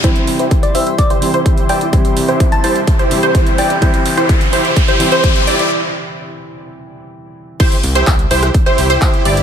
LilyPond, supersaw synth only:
\new Staff \with { instrumentName = "Supersaw synth" } { \time 4/4 \key c \major \tempo 4 = 127 <e' g' c''>16 r8 <e' g' c''>16 r8 <e' g' c''>16 r8 <e' g' c''>8 <e' g' c''>8. <e' g' d''>16 r16 | <e' g' c''>16 r8 <e' g' c''>16 r8 <e' g' c''>16 r8 <e' g' c''>8 <e' g' c''>8. <e' g' d''>16 r16 | <e' g' c''>16 r8 <e' g' c''>16 r8 <e' g' c''>16 r8 <e' g' c''>8 <e' g' c''>8. <e' g' d''>16 r16 | r1 |
<e' g' c''>16 r8 <e' g' c''>16 r8 <e' g' c''>16 r8 <e' g' c''>8 <e' g' c''>8. <e' g' d''>16 r16 | }